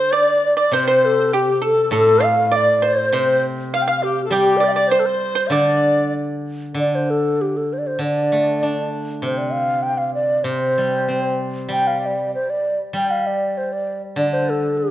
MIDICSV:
0, 0, Header, 1, 5, 480
1, 0, Start_track
1, 0, Tempo, 600601
1, 581, Time_signature, 2, 2, 24, 8
1, 4904, Tempo, 617284
1, 11725, End_track
2, 0, Start_track
2, 0, Title_t, "Xiao"
2, 0, Program_c, 0, 77
2, 0, Note_on_c, 0, 72, 83
2, 117, Note_on_c, 0, 74, 87
2, 129, Note_off_c, 0, 72, 0
2, 468, Note_off_c, 0, 74, 0
2, 476, Note_on_c, 0, 74, 84
2, 554, Note_off_c, 0, 74, 0
2, 554, Note_on_c, 0, 74, 63
2, 585, Note_on_c, 0, 72, 93
2, 597, Note_off_c, 0, 74, 0
2, 698, Note_off_c, 0, 72, 0
2, 702, Note_on_c, 0, 72, 75
2, 840, Note_on_c, 0, 69, 74
2, 852, Note_off_c, 0, 72, 0
2, 1072, Note_on_c, 0, 67, 75
2, 1084, Note_off_c, 0, 69, 0
2, 1308, Note_off_c, 0, 67, 0
2, 1319, Note_on_c, 0, 69, 78
2, 1538, Note_off_c, 0, 69, 0
2, 1547, Note_on_c, 0, 69, 92
2, 1793, Note_on_c, 0, 77, 85
2, 1805, Note_off_c, 0, 69, 0
2, 2047, Note_on_c, 0, 74, 89
2, 2059, Note_off_c, 0, 77, 0
2, 2306, Note_on_c, 0, 72, 83
2, 2318, Note_off_c, 0, 74, 0
2, 2534, Note_off_c, 0, 72, 0
2, 2538, Note_on_c, 0, 72, 85
2, 2753, Note_off_c, 0, 72, 0
2, 2998, Note_on_c, 0, 77, 90
2, 3053, Note_on_c, 0, 79, 78
2, 3065, Note_off_c, 0, 77, 0
2, 3104, Note_on_c, 0, 77, 88
2, 3116, Note_off_c, 0, 79, 0
2, 3217, Note_off_c, 0, 77, 0
2, 3222, Note_on_c, 0, 67, 77
2, 3426, Note_off_c, 0, 67, 0
2, 3431, Note_on_c, 0, 67, 84
2, 3653, Note_on_c, 0, 74, 81
2, 3665, Note_off_c, 0, 67, 0
2, 3743, Note_on_c, 0, 77, 70
2, 3755, Note_off_c, 0, 74, 0
2, 3768, Note_on_c, 0, 74, 84
2, 3780, Note_off_c, 0, 77, 0
2, 3897, Note_on_c, 0, 72, 84
2, 3909, Note_off_c, 0, 74, 0
2, 4395, Note_on_c, 0, 74, 88
2, 4407, Note_off_c, 0, 72, 0
2, 4894, Note_off_c, 0, 74, 0
2, 5413, Note_on_c, 0, 74, 84
2, 5539, Note_on_c, 0, 72, 71
2, 5550, Note_off_c, 0, 74, 0
2, 5656, Note_on_c, 0, 69, 69
2, 5668, Note_off_c, 0, 72, 0
2, 5898, Note_on_c, 0, 67, 65
2, 5909, Note_off_c, 0, 69, 0
2, 6019, Note_on_c, 0, 69, 62
2, 6030, Note_off_c, 0, 67, 0
2, 6144, Note_on_c, 0, 72, 67
2, 6156, Note_off_c, 0, 69, 0
2, 6186, Note_on_c, 0, 74, 61
2, 6198, Note_off_c, 0, 72, 0
2, 6252, Note_on_c, 0, 72, 71
2, 6264, Note_off_c, 0, 74, 0
2, 6371, Note_off_c, 0, 72, 0
2, 6380, Note_on_c, 0, 74, 79
2, 7055, Note_off_c, 0, 74, 0
2, 7325, Note_on_c, 0, 72, 77
2, 7424, Note_on_c, 0, 74, 71
2, 7435, Note_off_c, 0, 72, 0
2, 7539, Note_on_c, 0, 77, 80
2, 7551, Note_off_c, 0, 74, 0
2, 7774, Note_on_c, 0, 79, 87
2, 7786, Note_off_c, 0, 77, 0
2, 7891, Note_on_c, 0, 77, 78
2, 7903, Note_off_c, 0, 79, 0
2, 8017, Note_off_c, 0, 77, 0
2, 8021, Note_on_c, 0, 74, 80
2, 8250, Note_on_c, 0, 72, 79
2, 8262, Note_off_c, 0, 74, 0
2, 8984, Note_off_c, 0, 72, 0
2, 9245, Note_on_c, 0, 79, 84
2, 9364, Note_on_c, 0, 77, 72
2, 9376, Note_off_c, 0, 79, 0
2, 9508, Note_on_c, 0, 74, 68
2, 9520, Note_off_c, 0, 77, 0
2, 9727, Note_off_c, 0, 74, 0
2, 9732, Note_on_c, 0, 72, 76
2, 9852, Note_on_c, 0, 74, 72
2, 9864, Note_off_c, 0, 72, 0
2, 10088, Note_off_c, 0, 74, 0
2, 10209, Note_on_c, 0, 79, 87
2, 10324, Note_on_c, 0, 77, 75
2, 10336, Note_off_c, 0, 79, 0
2, 10450, Note_on_c, 0, 74, 69
2, 10462, Note_off_c, 0, 77, 0
2, 10688, Note_on_c, 0, 72, 75
2, 10700, Note_off_c, 0, 74, 0
2, 10807, Note_on_c, 0, 74, 73
2, 10818, Note_off_c, 0, 72, 0
2, 11039, Note_off_c, 0, 74, 0
2, 11156, Note_on_c, 0, 74, 86
2, 11278, Note_on_c, 0, 72, 73
2, 11290, Note_off_c, 0, 74, 0
2, 11404, Note_on_c, 0, 69, 71
2, 11416, Note_off_c, 0, 72, 0
2, 11620, Note_on_c, 0, 67, 70
2, 11632, Note_off_c, 0, 69, 0
2, 11725, Note_off_c, 0, 67, 0
2, 11725, End_track
3, 0, Start_track
3, 0, Title_t, "Dizi"
3, 0, Program_c, 1, 73
3, 0, Note_on_c, 1, 72, 75
3, 94, Note_on_c, 1, 74, 76
3, 106, Note_off_c, 1, 72, 0
3, 457, Note_off_c, 1, 74, 0
3, 460, Note_on_c, 1, 74, 66
3, 584, Note_on_c, 1, 72, 70
3, 596, Note_off_c, 1, 74, 0
3, 698, Note_off_c, 1, 72, 0
3, 703, Note_on_c, 1, 72, 71
3, 1062, Note_on_c, 1, 67, 61
3, 1074, Note_off_c, 1, 72, 0
3, 1296, Note_on_c, 1, 69, 61
3, 1308, Note_off_c, 1, 67, 0
3, 1543, Note_off_c, 1, 69, 0
3, 1550, Note_on_c, 1, 69, 65
3, 1801, Note_off_c, 1, 69, 0
3, 2029, Note_on_c, 1, 74, 67
3, 2258, Note_off_c, 1, 74, 0
3, 2287, Note_on_c, 1, 72, 65
3, 2500, Note_off_c, 1, 72, 0
3, 2505, Note_on_c, 1, 72, 65
3, 2735, Note_off_c, 1, 72, 0
3, 2992, Note_on_c, 1, 77, 77
3, 3090, Note_off_c, 1, 77, 0
3, 3095, Note_on_c, 1, 77, 72
3, 3223, Note_on_c, 1, 67, 68
3, 3235, Note_off_c, 1, 77, 0
3, 3391, Note_off_c, 1, 67, 0
3, 3396, Note_on_c, 1, 69, 51
3, 3451, Note_on_c, 1, 67, 72
3, 3463, Note_off_c, 1, 69, 0
3, 3705, Note_on_c, 1, 74, 77
3, 3717, Note_off_c, 1, 67, 0
3, 3799, Note_off_c, 1, 74, 0
3, 3803, Note_on_c, 1, 74, 74
3, 3917, Note_on_c, 1, 72, 71
3, 3929, Note_off_c, 1, 74, 0
3, 3992, Note_on_c, 1, 69, 59
3, 4004, Note_off_c, 1, 72, 0
3, 4043, Note_on_c, 1, 72, 72
3, 4055, Note_off_c, 1, 69, 0
3, 4371, Note_on_c, 1, 77, 51
3, 4383, Note_off_c, 1, 72, 0
3, 4415, Note_on_c, 1, 74, 65
3, 4427, Note_off_c, 1, 77, 0
3, 4904, Note_off_c, 1, 74, 0
3, 11725, End_track
4, 0, Start_track
4, 0, Title_t, "Pipa"
4, 0, Program_c, 2, 105
4, 101, Note_on_c, 2, 74, 71
4, 435, Note_off_c, 2, 74, 0
4, 454, Note_on_c, 2, 74, 62
4, 568, Note_off_c, 2, 74, 0
4, 586, Note_on_c, 2, 72, 70
4, 690, Note_off_c, 2, 72, 0
4, 699, Note_on_c, 2, 72, 74
4, 1034, Note_off_c, 2, 72, 0
4, 1066, Note_on_c, 2, 67, 65
4, 1288, Note_off_c, 2, 67, 0
4, 1292, Note_on_c, 2, 69, 62
4, 1524, Note_off_c, 2, 69, 0
4, 1537, Note_on_c, 2, 69, 73
4, 1761, Note_on_c, 2, 77, 67
4, 1770, Note_off_c, 2, 69, 0
4, 2002, Note_off_c, 2, 77, 0
4, 2010, Note_on_c, 2, 74, 72
4, 2248, Note_off_c, 2, 74, 0
4, 2256, Note_on_c, 2, 72, 68
4, 2491, Note_off_c, 2, 72, 0
4, 2502, Note_on_c, 2, 72, 66
4, 2734, Note_off_c, 2, 72, 0
4, 2987, Note_on_c, 2, 77, 80
4, 3088, Note_off_c, 2, 77, 0
4, 3097, Note_on_c, 2, 77, 81
4, 3438, Note_off_c, 2, 77, 0
4, 3454, Note_on_c, 2, 67, 71
4, 3678, Note_on_c, 2, 74, 62
4, 3679, Note_off_c, 2, 67, 0
4, 3791, Note_off_c, 2, 74, 0
4, 3803, Note_on_c, 2, 74, 61
4, 3926, Note_off_c, 2, 74, 0
4, 3928, Note_on_c, 2, 72, 72
4, 4266, Note_off_c, 2, 72, 0
4, 4278, Note_on_c, 2, 72, 63
4, 4398, Note_off_c, 2, 72, 0
4, 4410, Note_on_c, 2, 74, 67
4, 4870, Note_off_c, 2, 74, 0
4, 11725, End_track
5, 0, Start_track
5, 0, Title_t, "Guzheng"
5, 0, Program_c, 3, 107
5, 0, Note_on_c, 3, 50, 57
5, 97, Note_off_c, 3, 50, 0
5, 571, Note_on_c, 3, 48, 52
5, 1525, Note_on_c, 3, 45, 55
5, 1541, Note_off_c, 3, 48, 0
5, 2497, Note_on_c, 3, 48, 55
5, 2511, Note_off_c, 3, 45, 0
5, 3440, Note_on_c, 3, 55, 57
5, 3928, Note_off_c, 3, 48, 0
5, 4394, Note_on_c, 3, 50, 54
5, 4891, Note_off_c, 3, 55, 0
5, 5367, Note_off_c, 3, 50, 0
5, 5377, Note_on_c, 3, 50, 44
5, 6334, Note_off_c, 3, 50, 0
5, 6343, Note_on_c, 3, 50, 46
5, 6602, Note_on_c, 3, 57, 36
5, 6841, Note_on_c, 3, 62, 37
5, 7303, Note_on_c, 3, 48, 48
5, 7550, Note_off_c, 3, 57, 0
5, 7778, Note_off_c, 3, 50, 0
5, 7788, Note_off_c, 3, 62, 0
5, 8243, Note_off_c, 3, 48, 0
5, 8252, Note_on_c, 3, 48, 50
5, 8513, Note_on_c, 3, 55, 37
5, 8752, Note_on_c, 3, 60, 34
5, 9209, Note_off_c, 3, 55, 0
5, 9219, Note_on_c, 3, 55, 47
5, 9717, Note_off_c, 3, 48, 0
5, 9725, Note_off_c, 3, 60, 0
5, 10180, Note_off_c, 3, 55, 0
5, 10189, Note_on_c, 3, 55, 48
5, 11144, Note_on_c, 3, 50, 53
5, 11619, Note_off_c, 3, 55, 0
5, 11725, Note_off_c, 3, 50, 0
5, 11725, End_track
0, 0, End_of_file